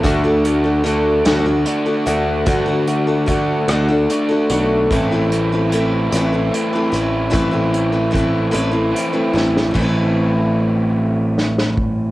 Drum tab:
RD |------------|------------|------------|------------|
HH |x-x-x-x-x-x-|x-x-x-x-x-x-|x-x-x-x-x-x-|x-x-x-x-x---|
SD |------o-----|------r-----|------------|----------oo|
BD |o-----------|o---o-------|o-----------|o---o-------|

RD |x-----------|
HH |------------|
SD |--------oo--|
BD |o---------o-|